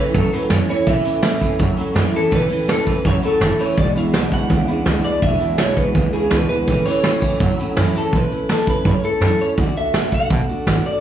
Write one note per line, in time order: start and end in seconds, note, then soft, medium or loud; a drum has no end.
0.00 0.13 A2 medium
0.00 0.13 E3 medium
0.00 0.14 A3 soft
0.00 0.15 C#4 medium
0.00 0.15 E4 medium
0.00 0.16 B4 medium
0.14 0.27 F#2 medium
0.14 0.31 A2 medium
0.14 0.33 E3 medium
0.14 0.31 F#3 loud
0.14 0.33 A3 medium
0.14 0.33 C#4 medium
0.14 0.32 E4 medium
0.14 0.33 A4 medium
0.14 kick loud
0.14 closed hi-hat medium
0.32 0.49 A2 medium
0.32 0.50 F#3 medium
0.32 0.51 A3 soft
0.32 0.51 C#4 soft
0.32 0.51 E4 medium
0.32 0.51 B4 medium
0.32 muted upright bass stroke medium
0.32 closed hi-hat medium
0.50 0.63 F#2 medium
0.50 0.67 A2 medium
0.50 0.69 A2 medium
0.50 0.68 E3 medium
0.50 0.70 E3 medium
0.50 0.70 A3 medium
0.50 0.69 C#4 medium
0.50 0.68 E4 medium
0.50 0.69 C#5 medium
0.50 snare loud
0.50 closed hi-hat medium
0.68 0.86 A2 medium
0.68 0.86 E3 medium
0.68 0.86 A3 soft
0.68 0.87 C#4 soft
0.68 0.87 E4 medium
0.68 0.89 C#5 medium
0.68 muted upright bass stroke medium
0.86 0.99 A1 loud
0.86 1.05 A2 medium
0.86 1.03 A2 medium
0.86 1.05 E3 medium
0.86 1.04 E3 loud
0.86 1.06 A3 medium
0.86 1.05 C#4 medium
0.86 1.03 E4 medium
0.86 1.56 E5 loud
0.86 kick loud
0.86 closed hi-hat medium
1.04 1.21 A2 medium
1.04 1.22 E3 medium
1.04 1.23 A3 soft
1.04 1.23 C#4 soft
1.04 1.23 E4 medium
1.04 muted upright bass stroke medium
1.04 closed hi-hat medium
1.22 1.35 E2 medium
1.22 1.41 A2 medium
1.22 1.40 A2 medium
1.22 1.40 E3 medium
1.22 1.42 E3 medium
1.22 1.42 A3 medium
1.22 1.41 C#4 medium
1.22 1.40 E4 medium
1.22 snare loud
1.22 closed hi-hat medium
1.41 1.54 F#2 medium
1.41 1.57 A2 medium
1.41 1.58 E3 medium
1.41 1.59 A3 soft
1.41 1.60 C#4 medium
1.41 1.60 E4 medium
1.41 kick medium
1.41 closed hi-hat medium
1.59 1.72 F#2 medium
1.59 1.76 A2 medium
1.59 1.78 E3 medium
1.59 1.76 F#3 loud
1.59 1.78 A3 medium
1.59 1.77 C#4 medium
1.59 1.76 E4 medium
1.59 kick loud
1.59 closed hi-hat medium
1.77 1.94 A2 medium
1.77 1.94 F#3 medium
1.77 1.96 A3 medium
1.77 1.96 C#4 medium
1.77 1.96 E4 medium
1.77 muted upright bass stroke medium
1.77 closed hi-hat medium
1.95 2.08 F#2 medium
1.95 2.12 A2 medium
1.95 2.15 A2 medium
1.95 2.12 E3 medium
1.95 2.15 E3 medium
1.95 2.15 A3 medium
1.95 2.14 C#4 loud
1.95 2.12 E4 loud
1.95 snare loud
1.95 closed hi-hat medium
2.13 2.30 A2 medium
2.13 2.30 E3 medium
2.13 2.32 A3 soft
2.13 2.33 C#4 soft
2.13 2.32 E4 soft
2.13 2.34 A4 medium
2.13 muted upright bass stroke medium
2.31 2.44 A1 loud
2.31 2.48 A2 loud
2.31 2.50 A2 medium
2.31 2.48 E3 medium
2.31 2.51 E3 medium
2.31 2.51 A3 medium
2.31 2.50 C#4 medium
2.31 2.48 E4 medium
2.31 2.68 B4 loud
2.31 kick loud
2.31 closed hi-hat medium
2.49 2.66 A2 medium
2.49 2.66 E3 medium
2.49 2.68 A3 soft
2.49 2.69 C#4 soft
2.49 2.68 E4 medium
2.49 muted upright bass stroke medium
2.49 closed hi-hat medium
2.67 2.80 E2 medium
2.67 2.85 A2 medium
2.67 2.87 A2 medium
2.67 2.85 E3 medium
2.67 2.87 E3 medium
2.67 2.87 A3 medium
2.67 2.86 C#4 medium
2.67 2.85 E4 medium
2.67 2.90 A4 medium
2.67 snare loud
2.67 closed hi-hat medium
2.86 2.99 F#2 medium
2.86 3.03 A2 medium
2.86 3.03 E3 medium
2.86 3.04 A3 soft
2.86 3.05 C#4 soft
2.86 3.05 E4 medium
2.86 3.07 B4 medium
2.86 kick medium
2.86 closed hi-hat medium
3.04 3.17 F#2 medium
3.04 3.21 A2 medium
3.04 3.23 E3 medium
3.04 3.22 F#3 medium
3.04 3.23 A3 medium
3.04 3.23 C#4 medium
3.04 3.21 E4 medium
3.04 3.12 C#5 loud
3.04 kick loud
3.04 closed hi-hat medium
3.22 3.39 A2 medium
3.22 3.40 F#3 medium
3.22 3.40 A3 soft
3.22 3.40 C#4 soft
3.22 3.40 E4 medium
3.22 3.62 A4 medium
3.22 muted upright bass stroke medium
3.22 closed hi-hat medium
3.40 3.53 F#1 medium
3.40 3.59 A2 medium
3.40 3.58 A2 medium
3.40 3.59 E3 medium
3.40 3.58 E3 medium
3.40 3.59 A3 medium
3.40 3.59 C#4 medium
3.40 3.57 E4 medium
3.40 snare loud
3.40 closed hi-hat medium
3.58 3.75 A2 medium
3.58 3.76 E3 medium
3.58 3.78 A3 soft
3.58 3.78 C#4 soft
3.58 3.77 E4 medium
3.58 3.79 C#5 medium
3.58 muted upright bass stroke medium
3.76 3.90 E1 medium
3.76 3.95 E2 medium
3.76 3.94 E2 medium
3.76 3.96 B2 medium
3.76 3.94 B2 medium
3.76 3.96 E3 medium
3.76 3.96 G#3 medium
3.76 3.95 D4 medium
3.76 3.94 E4 medium
3.76 3.84 D5 loud
3.76 kick loud
3.76 closed hi-hat medium
3.95 4.12 E2 medium
3.95 4.12 B2 medium
3.95 4.13 E3 soft
3.95 4.13 G#3 soft
3.95 4.14 D4 soft
3.95 4.14 E4 medium
3.95 4.33 E5 loud
3.95 muted upright bass stroke medium
3.95 closed hi-hat medium
4.13 4.26 B1 medium
4.13 4.32 E2 medium
4.13 4.30 E2 medium
4.13 4.32 B2 medium
4.13 4.30 B2 medium
4.13 4.32 E3 medium
4.13 4.32 G#3 medium
4.13 4.32 D4 medium
4.13 4.30 E4 medium
4.13 snare loud
4.13 closed hi-hat medium
4.32 4.44 C#2 medium
4.32 4.48 E2 medium
4.32 4.48 B2 medium
4.32 4.49 E3 soft
4.32 4.50 G#3 soft
4.32 4.51 D4 soft
4.32 4.50 E4 medium
4.32 5.01 F#5 loud
4.32 kick medium
4.32 closed hi-hat medium
4.50 4.62 D2 loud
4.50 4.66 E2 medium
4.50 4.66 C#3 loud
4.50 4.68 E3 medium
4.50 4.69 G#3 medium
4.50 4.68 D4 medium
4.50 4.67 E4 medium
4.50 kick loud
4.50 closed hi-hat medium
4.68 4.84 E2 medium
4.68 4.85 C#3 medium
4.68 4.86 E3 soft
4.68 4.87 G#3 soft
4.68 4.87 D4 medium
4.68 4.86 E4 medium
4.68 muted upright bass stroke medium
4.68 closed hi-hat medium
4.86 4.98 C#2 medium
4.86 5.05 E2 medium
4.86 5.03 E2 medium
4.86 5.05 B2 medium
4.86 5.03 B2 medium
4.86 5.05 E3 medium
4.86 5.05 G#3 medium
4.86 5.05 D4 medium
4.86 5.04 E4 loud
4.86 snare loud
4.86 closed hi-hat medium
5.04 5.20 E2 medium
5.04 5.21 B2 medium
5.04 5.22 G#3 medium
5.04 5.22 D4 soft
5.04 5.23 E4 medium
5.04 5.23 D5 medium
5.08 5.21 E3 soft
5.21 5.35 E1 loud
5.21 5.38 E2 medium
5.21 5.41 E2 medium
5.21 5.39 B2 loud
5.21 5.41 B2 medium
5.21 5.41 E3 medium
5.21 5.41 G#3 medium
5.21 5.40 D4 medium
5.21 5.39 E4 medium
5.21 5.60 E5 loud
5.21 kick loud
5.21 closed hi-hat medium
5.40 5.57 E2 medium
5.40 5.57 B2 medium
5.40 5.59 E3 soft
5.40 5.59 G#3 soft
5.40 5.59 D4 medium
5.40 5.59 E4 medium
5.40 muted upright bass stroke medium
5.40 closed hi-hat medium
5.58 5.71 B1 medium
5.58 5.75 E2 medium
5.58 5.77 E2 medium
5.58 5.75 B2 medium
5.58 5.77 B2 medium
5.58 5.78 E3 medium
5.58 5.78 G#3 medium
5.58 5.77 D4 medium
5.58 5.76 E4 medium
5.58 5.77 C#5 loud
5.58 snare loud
5.58 closed hi-hat medium
5.76 5.89 C#2 medium
5.76 5.93 E2 medium
5.76 5.93 B2 medium
5.76 5.94 E3 soft
5.76 5.95 G#3 medium
5.76 5.96 D4 medium
5.76 5.95 E4 medium
5.76 6.13 B4 loud
5.76 kick medium
5.76 closed hi-hat medium
5.94 6.07 D2 medium
5.94 6.11 E2 medium
5.94 6.12 C#3 loud
5.94 6.13 E3 medium
5.94 6.13 G#3 medium
5.94 6.13 D4 medium
5.94 6.12 E4 medium
5.94 kick loud
5.94 closed hi-hat medium
6.13 6.30 E2 medium
6.13 6.30 C#3 medium
6.13 6.31 E3 soft
6.13 6.32 G#3 medium
6.13 6.32 D4 medium
6.13 6.31 E4 medium
6.13 6.30 G#4 medium
6.13 muted upright bass stroke medium
6.13 closed hi-hat medium
6.30 6.43 C#2 medium
6.30 6.48 E2 medium
6.30 6.50 E2 medium
6.30 6.50 B2 medium
6.30 6.48 B2 medium
6.30 6.50 E3 medium
6.30 6.50 G#3 medium
6.30 6.49 D4 medium
6.30 6.48 E4 medium
6.30 6.48 B4 medium
6.30 snare loud
6.30 closed hi-hat medium
6.49 6.66 E2 medium
6.49 6.66 B2 medium
6.49 6.67 E3 soft
6.49 6.68 G#3 soft
6.49 6.68 D4 soft
6.49 6.67 E4 medium
6.49 6.87 B4 medium
6.67 6.80 A1 loud
6.67 6.86 A2 medium
6.67 6.84 A2 medium
6.67 6.86 E3 medium
6.67 6.85 E3 loud
6.67 6.86 A3 medium
6.67 6.86 C#4 medium
6.67 6.85 E4 medium
6.67 kick loud
6.67 closed hi-hat medium
6.85 7.03 A2 medium
6.85 7.03 E3 medium
6.85 7.04 A3 soft
6.85 7.05 C#4 soft
6.85 7.04 E4 soft
6.85 7.54 C#5 medium
6.85 muted upright bass stroke medium
6.85 closed hi-hat medium
7.04 7.16 E2 medium
7.04 7.20 A2 medium
7.04 7.22 A2 medium
7.04 7.20 E3 medium
7.04 7.23 E3 medium
7.04 7.23 A3 medium
7.04 7.22 C#4 medium
7.04 7.21 E4 medium
7.04 snare loud
7.04 closed hi-hat medium
7.22 7.34 F#2 medium
7.22 7.38 A2 medium
7.22 7.39 E3 medium
7.22 7.41 A3 soft
7.22 7.41 C#4 soft
7.22 7.40 E4 medium
7.22 kick medium
7.22 closed hi-hat medium
7.40 7.53 F#2 loud
7.40 7.57 A2 medium
7.40 7.59 E3 medium
7.40 7.57 F#3 loud
7.40 7.59 A3 medium
7.40 7.60 C#4 medium
7.40 7.59 E4 medium
7.40 kick loud
7.40 closed hi-hat medium
7.59 7.75 A2 medium
7.59 7.76 F#3 medium
7.59 7.78 C#4 medium
7.59 7.77 E4 medium
7.59 muted upright bass stroke medium
7.59 closed hi-hat medium
7.63 7.77 A3 soft
7.77 7.89 F#2 medium
7.77 7.93 A2 medium
7.77 7.95 A2 medium
7.77 7.95 E3 medium
7.77 7.93 E3 medium
7.77 7.95 A3 medium
7.77 7.95 C#4 medium
7.77 7.93 E4 loud
7.77 snare loud
7.77 closed hi-hat medium
7.94 8.11 A2 medium
7.94 8.11 E3 medium
7.94 8.13 A3 soft
7.94 8.13 C#4 medium
7.94 8.13 E4 medium
7.94 8.16 A4 medium
7.94 muted upright bass stroke medium
8.13 8.25 A1 loud
8.13 8.31 A2 medium
8.13 8.31 E3 medium
8.13 8.32 A3 medium
8.13 8.32 C#4 medium
8.13 8.30 E4 medium
8.13 8.51 B4 medium
8.13 kick loud
8.13 closed hi-hat medium
8.31 8.49 A3 soft
8.31 8.50 C#4 soft
8.31 8.49 E4 soft
8.31 muted upright bass stroke medium
8.31 closed hi-hat medium
8.49 8.62 E2 medium
8.49 8.67 A2 medium
8.49 8.67 E3 medium
8.49 8.68 A3 medium
8.49 8.67 C#4 medium
8.49 8.65 E4 medium
8.49 8.69 A4 medium
8.49 snare loud
8.49 closed hi-hat medium
8.67 8.79 F#2 medium
8.67 8.86 A3 soft
8.67 8.86 C#4 soft
8.67 8.85 E4 medium
8.67 8.87 B4 medium
8.67 kick medium
8.67 closed hi-hat medium
8.85 8.98 F#2 medium
8.85 9.04 E3 medium
8.85 9.04 A3 medium
8.85 9.04 C#4 medium
8.85 9.02 E4 medium
8.85 9.05 C#5 medium
8.85 kick loud
8.85 closed hi-hat medium
9.03 9.22 A3 soft
9.03 9.22 C#4 soft
9.03 9.22 E4 medium
9.03 9.42 A4 medium
9.03 muted upright bass stroke medium
9.03 closed hi-hat medium
9.21 9.33 F#2 medium
9.21 9.40 A2 medium
9.21 9.40 E3 medium
9.21 9.40 A3 medium
9.21 9.39 C#4 medium
9.21 9.38 E4 medium
9.21 snare loud
9.21 closed hi-hat medium
9.39 9.57 A3 soft
9.39 9.58 C#4 medium
9.39 9.58 E4 medium
9.39 9.46 C#5 medium
9.39 muted upright bass stroke medium
9.57 9.70 D2 loud
9.57 9.76 D3 medium
9.57 9.77 A3 medium
9.57 9.77 D4 medium
9.57 9.75 F#4 medium
9.57 9.77 D5 loud
9.57 kick loud
9.57 closed hi-hat medium
9.76 9.95 A3 soft
9.76 9.95 D4 soft
9.76 9.94 F#4 medium
9.76 10.14 E5 loud
9.76 muted upright bass stroke medium
9.76 closed hi-hat medium
9.93 10.06 A2 medium
9.93 10.13 D3 medium
9.93 10.13 A3 medium
9.93 10.12 D4 medium
9.93 10.11 F#4 medium
9.93 snare loud
9.93 closed hi-hat medium
10.12 10.24 B2 medium
10.12 10.31 A3 soft
10.12 10.31 D4 soft
10.12 10.31 F#4 medium
10.12 10.86 F#5 loud
10.12 kick medium
10.12 closed hi-hat medium
10.30 10.43 B2 medium
10.30 10.49 D3 medium
10.30 10.50 A3 medium
10.30 10.50 D4 medium
10.30 kick loud
10.30 closed hi-hat medium
10.34 10.49 F#4 medium
10.48 10.66 D4 medium
10.48 10.68 F#4 medium
10.48 muted upright bass stroke medium
10.48 closed hi-hat medium
10.53 10.66 A3 soft
10.66 10.79 G#1 medium
10.66 10.85 D3 medium
10.66 10.85 A3 medium
10.66 10.85 D4 loud
10.66 10.83 F#4 loud
10.66 snare loud
10.66 closed hi-hat medium
10.84 11.00 A3 soft
10.84 11.00 D4 soft
10.84 11.00 F#4 medium
10.84 11.00 D5 medium
10.84 muted upright bass stroke medium